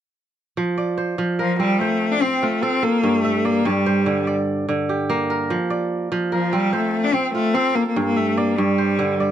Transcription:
0.57 1.17 F3 medium
0.78 1.88 D5 medium
0.98 1.81 C5 medium
1.18 3.09 F3 medium
1.39 1.59 F3 medium
1.39 2.69 A#4 medium
1.60 1.81 G3 medium
1.60 2.21 C4 medium
1.79 2.13 A3 medium
1.79 3.00 C5 medium
2.11 2.23 D4 medium
2.22 2.44 C4 medium
2.22 4.02 C4 medium
2.43 2.64 A3 medium
2.43 3.31 F4 medium
2.63 2.85 C4 medium
2.63 2.82 A4 medium
2.83 3.25 A#3 medium
2.83 4.14 A4 medium
3.03 3.64 G2 medium
3.23 3.46 A3 medium
3.23 4.28 E5 medium
3.45 3.68 A#3 medium
3.45 4.27 D5 medium
3.65 5.55 G2 medium
3.65 4.28 G3 medium
3.86 5.05 C5 medium
4.06 4.67 D3 medium
4.27 5.38 D5 medium
4.69 5.55 D3 medium
4.89 6.30 G4 medium
5.10 7.02 A#3 medium
5.30 6.32 A#4 medium
5.50 6.10 F3 medium
5.70 6.81 D5 medium
6.12 8.01 F3 medium
6.32 6.55 F3 medium
6.32 7.61 A#4 medium
6.53 6.75 G3 medium
6.53 7.13 C4 medium
6.73 7.06 A3 medium
6.73 7.92 C5 medium
7.04 7.15 D4 medium
7.13 7.34 C4 medium
7.13 8.94 C4 medium
7.35 7.56 A3 medium
7.35 8.22 F4 medium
7.54 7.77 C4 medium
7.54 7.75 A4 medium
7.75 7.88 A#3 medium
7.75 9.07 A4 medium
7.88 8.03 A#3 medium
7.96 8.57 G2 medium
8.04 8.18 A#3 medium
8.16 8.39 A3 medium
8.16 9.20 E5 medium
8.37 8.59 A#3 medium
8.37 9.20 D5 medium
8.58 9.31 G2 medium
8.58 9.19 G3 medium
8.78 9.31 C5 medium
8.99 9.31 D3 medium
9.20 9.31 D5 medium

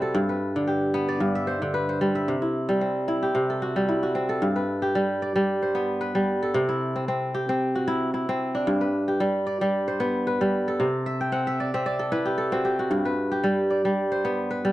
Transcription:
0.00 0.19 C3 medium
0.00 0.19 G3 medium
0.00 0.35 C4 medium
0.00 1.17 E4 medium
0.00 0.21 F#4 medium
0.00 1.34 A4 medium
0.15 1.19 G2 medium
0.29 1.53 B4 medium
0.56 1.61 D3 medium
0.67 2.09 G4 medium
0.94 1.53 B3 medium
1.09 2.19 D5 medium
1.20 2.34 G2 medium
1.35 2.15 E5 medium
1.47 1.89 C5 medium
1.62 2.34 D3 medium
1.74 2.34 B4 medium
1.89 3.08 C5 soft
2.01 2.34 G3 medium
2.15 3.19 E5 medium
2.28 3.33 C3 medium
2.42 3.08 E4 soft
2.69 3.75 G3 medium
2.81 4.15 C4 medium
3.08 3.88 E4 medium
3.23 3.68 G4 medium
3.35 4.47 C3 medium
3.50 4.29 A4 medium
3.62 4.02 F#4 medium
3.76 4.47 G3 medium
3.89 5.45 E4 medium
4.03 4.48 F#4 medium
4.15 4.62 C4 medium
4.29 5.61 A4 medium
4.42 6.60 G2 medium
4.56 5.68 B4 medium
4.82 6.23 G4 medium
4.95 5.34 G3 medium
5.22 6.33 D5 medium
5.36 6.14 G3 medium
5.62 6.07 C5 medium
5.75 6.60 B3 medium
6.01 6.60 B4 medium
6.15 6.60 G3 medium
6.43 7.74 A4 medium
6.54 8.72 C3 medium
6.69 7.87 E4 medium
6.96 7.08 C4 medium
7.08 7.49 C4 medium
7.34 7.81 G4 medium
7.49 8.28 C4 medium
7.75 8.73 F#4 medium
7.88 8.13 E4 medium
8.14 9.71 E4 medium
8.29 8.87 C4 medium
8.55 10.23 D4 medium
8.67 10.84 G2 medium
8.81 9.94 B4 medium
9.08 10.49 G4 medium
9.20 9.60 G3 medium
9.47 10.57 D5 medium
9.61 10.40 G3 medium
9.88 10.33 C5 medium
10.00 10.86 B3 medium
10.27 10.86 B4 medium
10.41 10.84 G3 medium
10.68 11.99 A4 medium
10.80 12.96 C3 medium
11.06 11.47 E5 medium
11.21 12.14 G5 medium
11.32 11.74 C4 medium
11.32 12.31 F#5 medium
11.47 11.74 E5 medium
11.60 11.86 D5 medium
11.74 12.18 C4 medium
11.74 12.77 E5 medium
11.86 12.97 D5 medium
11.99 12.37 A4 medium
12.12 13.69 E4 medium
12.12 12.58 B4 medium
12.25 12.58 G4 medium
12.38 13.69 A4 medium
12.52 13.11 C4 medium
12.52 12.79 F#4 medium
12.65 13.31 G4 medium
12.79 13.38 F#4 medium
12.91 14.72 G2 medium
13.05 14.18 B4 medium
13.32 14.72 G4 medium
13.44 13.84 G3 medium
13.70 14.72 D5 medium
13.85 14.63 G3 medium
14.12 14.57 C5 medium
14.25 14.72 B3 medium
14.51 14.72 B4 medium
14.65 14.72 G3 medium

